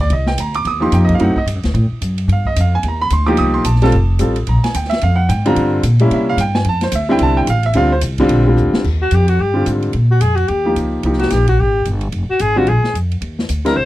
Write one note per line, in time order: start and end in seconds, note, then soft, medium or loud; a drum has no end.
0.01 0.11 D5 medium
0.10 0.37 C2 medium
0.10 0.28 D#5 medium
0.10 ride medium
0.26 0.38 G5 medium
0.26 snare medium
0.38 0.64 D2 medium
0.38 0.55 A#5 medium
0.38 hi-hat pedal medium
0.38 ride medium
0.54 0.66 D6 loud
0.54 ride medium
0.65 0.91 D#2 medium
0.65 0.82 D#6 loud
0.65 ride medium
0.80 1.17 F3 medium
0.80 1.17 A#3 medium
0.80 1.18 D#4 medium
0.80 1.18 G4 medium
0.80 0.93 C6 medium
0.92 1.19 F2 loud
0.92 1.02 G5 medium
0.92 hi-hat pedal medium
0.92 ride medium
1.05 1.12 D#5 medium
1.09 kick medium
1.09 ride soft
1.15 1.22 F5 medium
1.19 1.35 F#2 medium
1.19 1.34 F#3 medium
1.19 1.35 A3 medium
1.19 1.35 C4 medium
1.19 1.35 D#4 medium
1.19 ride medium
1.23 1.38 F#5 medium
1.36 1.44 D#5 medium
1.36 muted upright bass stroke soft
1.36 kick medium
1.46 1.55 G2 medium
1.46 hi-hat pedal medium
1.46 ride medium
1.55 1.64 F#2 medium
1.63 1.73 D2 medium
1.63 snare soft
1.63 ride medium
1.74 1.90 A2 loud
1.74 ride medium
1.92 muted upright bass stroke soft
2.01 2.27 F#2 medium
2.01 hi-hat pedal medium
2.01 ride medium
2.18 ride medium
2.28 2.55 G2 medium
2.28 ride medium
2.32 2.47 F5 medium
2.45 2.57 D#5 medium
2.45 kick medium
2.56 2.83 F2 medium
2.56 hi-hat pedal medium
2.56 ride medium
2.60 2.75 F5 medium
2.75 2.85 G#5 loud
2.83 3.10 D#2 medium
2.83 ride medium
2.88 3.02 A#5 medium
3.01 3.12 B5 loud
3.10 3.37 D2 medium
3.10 3.28 C6 loud
3.10 hi-hat pedal medium
3.10 ride medium
3.26 3.63 F3 medium
3.26 3.64 A#3 medium
3.26 3.64 D#4 medium
3.26 3.64 G4 medium
3.26 3.38 D6 medium
3.37 3.64 C2 medium
3.37 3.54 D#6 loud
3.37 ride medium
3.54 3.65 C6 medium
3.64 3.92 A#1 medium
3.64 3.81 A5 medium
3.64 hi-hat pedal medium
3.64 ride loud
3.75 snare soft
3.82 3.92 G3 medium
3.82 3.92 C4 medium
3.82 3.92 F4 medium
3.82 3.93 A4 loud
3.82 4.18 A5 loud
3.82 snare soft
3.82 ride soft
3.92 4.19 F1 medium
3.92 ride medium
4.19 4.47 A1 medium
4.19 4.35 G3 medium
4.19 4.35 C4 medium
4.19 4.35 F4 medium
4.19 4.35 A4 medium
4.19 hi-hat pedal medium
4.19 ride medium
4.36 ride medium
4.47 4.63 A#1 medium
4.47 4.64 A#5 medium
4.47 ride medium
4.64 4.74 G#5 medium
4.64 snare medium
4.64 ride medium
4.74 5.01 D2 medium
4.74 4.91 G5 medium
4.74 hi-hat pedal medium
4.74 ride medium
4.84 snare soft
4.90 5.01 E5 loud
4.90 snare medium
4.90 ride medium
5.01 5.28 F2 medium
5.01 5.19 F5 medium
5.01 ride medium
5.16 5.28 F#5 loud
5.29 5.55 G#2 medium
5.29 5.45 G5 medium
5.29 hi-hat pedal medium
5.29 ride medium
5.46 5.82 D3 medium
5.46 5.82 G3 medium
5.46 5.82 C4 medium
5.46 5.82 F4 loud
5.46 5.72 A#5 loud
5.46 ride medium
5.56 5.82 G2 medium
5.56 ride medium
5.83 6.10 A#2 medium
5.83 hi-hat pedal medium
5.83 ride medium
5.99 6.36 G3 medium
5.99 6.37 A#3 medium
5.99 6.37 C#4 medium
5.99 6.37 E4 medium
5.99 ride medium
6.11 6.36 C3 medium
6.11 6.28 E5 medium
6.11 ride medium
6.29 6.39 F5 loud
6.37 6.64 G2 medium
6.37 6.55 G5 medium
6.37 hi-hat pedal medium
6.37 ride medium
6.55 6.65 G#5 loud
6.55 snare medium
6.65 6.92 F2 medium
6.65 ride medium
6.69 6.83 A5 loud
6.81 6.93 C5 medium
6.81 snare soft
6.81 ride medium
6.92 7.19 D2 medium
6.92 7.10 E5 medium
6.92 hi-hat pedal medium
6.92 ride medium
7.09 7.45 D3 medium
7.09 7.45 G3 medium
7.09 7.45 C4 medium
7.09 7.46 E4 loud
7.09 7.21 G5 loud
7.19 7.47 C2 medium
7.19 ride medium
7.23 7.37 A5 loud
7.37 7.47 G5 loud
7.47 7.74 A1 medium
7.47 7.65 F5 loud
7.47 hi-hat pedal medium
7.47 ride medium
7.63 7.75 E5 loud
7.63 ride medium
7.73 8.01 D2 medium
7.73 7.90 D3 medium
7.73 7.90 G3 medium
7.73 7.90 C4 medium
7.73 7.90 F4 medium
7.73 7.92 F5 loud
7.73 ride medium
7.92 7.98 C5 medium
8.01 8.28 C2 medium
8.01 hi-hat pedal medium
8.01 ride medium
8.18 8.45 D3 loud
8.18 8.45 G3 medium
8.18 8.45 C4 medium
8.18 8.45 F4 loud
8.18 kick medium
8.18 ride medium
8.29 8.55 A#1 loud
8.29 ride medium
8.47 8.82 D3 medium
8.47 8.82 G3 medium
8.47 8.83 C4 medium
8.47 8.83 F4 medium
8.57 8.72 D2 loud
8.57 hi-hat pedal medium
8.73 muted upright bass stroke soft
8.73 snare medium
8.84 9.11 D#2 medium
8.84 kick medium
8.84 crash medium
9.02 9.16 F#4 medium
9.11 9.38 F2 medium
9.11 9.28 G4 medium
9.11 hi-hat pedal medium
9.11 ride medium
9.28 9.42 F#4 medium
9.28 ride medium
9.40 9.67 G4 medium
9.54 9.91 D3 medium
9.54 9.91 G3 medium
9.54 9.91 C4 medium
9.54 9.91 F4 medium
9.66 9.93 G#2 medium
9.66 hi-hat pedal medium
9.66 ride medium
9.82 ride soft
9.93 10.20 A#2 medium
9.93 ride medium
10.11 10.23 F#4 medium
10.21 10.47 F2 medium
10.21 10.37 G#4 medium
10.21 hi-hat pedal medium
10.21 ride medium
10.36 10.49 F#4 medium
10.36 ride soft
10.48 10.75 D#2 medium
10.48 10.75 G4 medium
10.48 ride medium
10.65 11.01 F3 medium
10.65 11.01 A#3 medium
10.65 11.01 D#4 medium
10.65 11.02 G4 medium
10.76 11.02 C#2 medium
10.76 hi-hat pedal soft
10.76 ride medium
11.03 11.30 C2 medium
11.03 11.44 F3 medium
11.03 11.45 A#3 medium
11.03 11.45 D#4 medium
11.03 11.45 G4 medium
11.03 ride medium
11.13 snare soft
11.19 11.33 F#4 medium
11.19 snare soft
11.19 ride soft
11.30 11.58 A#1 medium
11.30 11.47 G4 medium
11.30 snare soft
11.30 hi-hat pedal medium
11.30 ride medium
11.47 11.61 F#4 medium
11.47 kick medium
11.47 ride medium
11.60 11.85 G#1 medium
11.60 11.86 G4 medium
11.85 12.12 G1 medium
11.85 hi-hat pedal soft
11.85 ride medium
12.01 ride soft
12.12 12.28 F1 medium
12.12 ride medium
12.30 12.43 F#4 medium
12.30 muted upright bass stroke soft
12.39 12.66 G#1 medium
12.39 12.59 G#4 medium
12.39 hi-hat pedal medium
12.39 ride medium
12.56 12.66 D3 medium
12.56 12.66 G3 medium
12.56 12.66 C4 medium
12.56 12.67 F4 medium
12.56 12.70 F#4 medium
12.67 12.82 A#1 medium
12.67 12.95 G#4 medium
12.67 ride medium
12.84 snare soft
12.94 13.20 F2 medium
12.94 hi-hat pedal medium
12.94 ride medium
13.11 ride soft
13.21 13.48 D#2 medium
13.21 ride medium
13.39 snare medium
13.49 13.75 D2 medium
13.49 hi-hat pedal medium
13.49 ride medium
13.65 13.75 D3 medium
13.65 13.75 G3 medium
13.65 13.75 C4 medium
13.65 13.76 E4 medium
13.65 13.78 A#4 medium
13.65 snare soft
13.65 ride medium
13.76 13.85 C2 medium
13.76 13.85 C5 medium